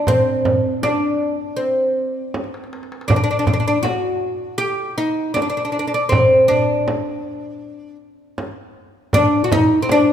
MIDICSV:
0, 0, Header, 1, 4, 480
1, 0, Start_track
1, 0, Tempo, 754717
1, 53, Time_signature, 4, 2, 24, 8
1, 6441, End_track
2, 0, Start_track
2, 0, Title_t, "Oud"
2, 0, Program_c, 0, 24
2, 51, Note_on_c, 0, 60, 89
2, 529, Note_on_c, 0, 62, 77
2, 547, Note_off_c, 0, 60, 0
2, 995, Note_on_c, 0, 60, 65
2, 1026, Note_off_c, 0, 62, 0
2, 1699, Note_off_c, 0, 60, 0
2, 1958, Note_on_c, 0, 62, 76
2, 2003, Note_off_c, 0, 62, 0
2, 2011, Note_on_c, 0, 62, 57
2, 2050, Note_off_c, 0, 62, 0
2, 2058, Note_on_c, 0, 62, 62
2, 2095, Note_off_c, 0, 62, 0
2, 2103, Note_on_c, 0, 62, 52
2, 2149, Note_off_c, 0, 62, 0
2, 2156, Note_on_c, 0, 62, 58
2, 2201, Note_off_c, 0, 62, 0
2, 2209, Note_on_c, 0, 62, 51
2, 2240, Note_off_c, 0, 62, 0
2, 2248, Note_on_c, 0, 62, 59
2, 2280, Note_off_c, 0, 62, 0
2, 2288, Note_on_c, 0, 62, 51
2, 2330, Note_off_c, 0, 62, 0
2, 2338, Note_on_c, 0, 62, 70
2, 2394, Note_off_c, 0, 62, 0
2, 2433, Note_on_c, 0, 66, 83
2, 2910, Note_off_c, 0, 66, 0
2, 2912, Note_on_c, 0, 67, 97
2, 3163, Note_off_c, 0, 67, 0
2, 3165, Note_on_c, 0, 63, 84
2, 3394, Note_off_c, 0, 63, 0
2, 3397, Note_on_c, 0, 62, 76
2, 3439, Note_off_c, 0, 62, 0
2, 3446, Note_on_c, 0, 62, 53
2, 3487, Note_off_c, 0, 62, 0
2, 3495, Note_on_c, 0, 62, 60
2, 3535, Note_off_c, 0, 62, 0
2, 3543, Note_on_c, 0, 62, 48
2, 3584, Note_off_c, 0, 62, 0
2, 3592, Note_on_c, 0, 62, 49
2, 3631, Note_off_c, 0, 62, 0
2, 3638, Note_on_c, 0, 62, 49
2, 3676, Note_off_c, 0, 62, 0
2, 3684, Note_on_c, 0, 62, 56
2, 3729, Note_off_c, 0, 62, 0
2, 3736, Note_on_c, 0, 62, 53
2, 3771, Note_off_c, 0, 62, 0
2, 3779, Note_on_c, 0, 62, 65
2, 3829, Note_off_c, 0, 62, 0
2, 3874, Note_on_c, 0, 60, 79
2, 4120, Note_off_c, 0, 60, 0
2, 4122, Note_on_c, 0, 62, 75
2, 5062, Note_off_c, 0, 62, 0
2, 5814, Note_on_c, 0, 62, 101
2, 6002, Note_off_c, 0, 62, 0
2, 6004, Note_on_c, 0, 66, 66
2, 6050, Note_off_c, 0, 66, 0
2, 6057, Note_on_c, 0, 63, 97
2, 6245, Note_off_c, 0, 63, 0
2, 6248, Note_on_c, 0, 60, 67
2, 6292, Note_off_c, 0, 60, 0
2, 6306, Note_on_c, 0, 62, 92
2, 6441, Note_off_c, 0, 62, 0
2, 6441, End_track
3, 0, Start_track
3, 0, Title_t, "Darbuka"
3, 46, Note_on_c, 9, 64, 83
3, 110, Note_off_c, 9, 64, 0
3, 292, Note_on_c, 9, 64, 80
3, 355, Note_off_c, 9, 64, 0
3, 537, Note_on_c, 9, 63, 59
3, 601, Note_off_c, 9, 63, 0
3, 780, Note_on_c, 9, 62, 27
3, 844, Note_off_c, 9, 62, 0
3, 1015, Note_on_c, 9, 62, 28
3, 1079, Note_off_c, 9, 62, 0
3, 1495, Note_on_c, 9, 63, 50
3, 1552, Note_on_c, 9, 62, 59
3, 1558, Note_off_c, 9, 63, 0
3, 1616, Note_off_c, 9, 62, 0
3, 1617, Note_on_c, 9, 63, 57
3, 1677, Note_on_c, 9, 62, 61
3, 1680, Note_off_c, 9, 63, 0
3, 1736, Note_on_c, 9, 63, 71
3, 1741, Note_off_c, 9, 62, 0
3, 1799, Note_off_c, 9, 63, 0
3, 1800, Note_on_c, 9, 62, 69
3, 1857, Note_on_c, 9, 63, 71
3, 1863, Note_off_c, 9, 62, 0
3, 1916, Note_on_c, 9, 62, 78
3, 1921, Note_off_c, 9, 63, 0
3, 1971, Note_on_c, 9, 64, 80
3, 1980, Note_off_c, 9, 62, 0
3, 2035, Note_off_c, 9, 64, 0
3, 2208, Note_on_c, 9, 64, 75
3, 2271, Note_off_c, 9, 64, 0
3, 2448, Note_on_c, 9, 63, 63
3, 2512, Note_off_c, 9, 63, 0
3, 2696, Note_on_c, 9, 62, 27
3, 2759, Note_off_c, 9, 62, 0
3, 2936, Note_on_c, 9, 62, 26
3, 3000, Note_off_c, 9, 62, 0
3, 3415, Note_on_c, 9, 63, 62
3, 3478, Note_off_c, 9, 63, 0
3, 3895, Note_on_c, 9, 64, 91
3, 3959, Note_off_c, 9, 64, 0
3, 4020, Note_on_c, 9, 62, 23
3, 4083, Note_off_c, 9, 62, 0
3, 4142, Note_on_c, 9, 64, 81
3, 4205, Note_off_c, 9, 64, 0
3, 4377, Note_on_c, 9, 63, 59
3, 4440, Note_off_c, 9, 63, 0
3, 4620, Note_on_c, 9, 62, 24
3, 4683, Note_off_c, 9, 62, 0
3, 4863, Note_on_c, 9, 62, 22
3, 4926, Note_off_c, 9, 62, 0
3, 5336, Note_on_c, 9, 63, 69
3, 5399, Note_off_c, 9, 63, 0
3, 5813, Note_on_c, 9, 64, 73
3, 5876, Note_off_c, 9, 64, 0
3, 5938, Note_on_c, 9, 62, 23
3, 6001, Note_off_c, 9, 62, 0
3, 6056, Note_on_c, 9, 64, 72
3, 6120, Note_off_c, 9, 64, 0
3, 6291, Note_on_c, 9, 63, 65
3, 6354, Note_off_c, 9, 63, 0
3, 6441, End_track
4, 0, Start_track
4, 0, Title_t, "Frame drum"
4, 44, Note_on_c, 9, 64, 77
4, 107, Note_off_c, 9, 64, 0
4, 288, Note_on_c, 9, 64, 77
4, 351, Note_off_c, 9, 64, 0
4, 529, Note_on_c, 9, 64, 67
4, 593, Note_off_c, 9, 64, 0
4, 1490, Note_on_c, 9, 64, 62
4, 1554, Note_off_c, 9, 64, 0
4, 1970, Note_on_c, 9, 64, 86
4, 2033, Note_off_c, 9, 64, 0
4, 2206, Note_on_c, 9, 64, 82
4, 2269, Note_off_c, 9, 64, 0
4, 2447, Note_on_c, 9, 64, 70
4, 2510, Note_off_c, 9, 64, 0
4, 3412, Note_on_c, 9, 64, 63
4, 3475, Note_off_c, 9, 64, 0
4, 3893, Note_on_c, 9, 64, 82
4, 3957, Note_off_c, 9, 64, 0
4, 4374, Note_on_c, 9, 64, 67
4, 4437, Note_off_c, 9, 64, 0
4, 5330, Note_on_c, 9, 64, 63
4, 5393, Note_off_c, 9, 64, 0
4, 5806, Note_on_c, 9, 64, 83
4, 5870, Note_off_c, 9, 64, 0
4, 6052, Note_on_c, 9, 64, 80
4, 6115, Note_off_c, 9, 64, 0
4, 6293, Note_on_c, 9, 64, 69
4, 6356, Note_off_c, 9, 64, 0
4, 6441, End_track
0, 0, End_of_file